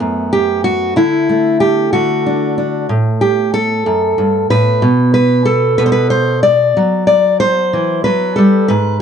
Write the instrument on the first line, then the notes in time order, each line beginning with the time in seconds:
steel-string acoustic guitar
Already playing: A3 B3
0.00 F#2
0.33 G4
0.64 F#4
0.96 D3 E4
1.29 A3
1.60 G4
1.93 D3 F#4
2.26 D4
2.58 D4
2.89 A2
3.21 G4
3.54 A4
3.86 F#2
4.18 G2
4.50 A2 B4
4.82 B2
5.14 B4
5.46 A4
5.78 B2 B4
5.86 C5
5.92 B4
6.10 C5
6.43 D5
6.77 F#3
7.07 D5
7.40 C5
7.73 E3
8.04 F#3 B4
8.36 G3 A4
8.68 G#2 B4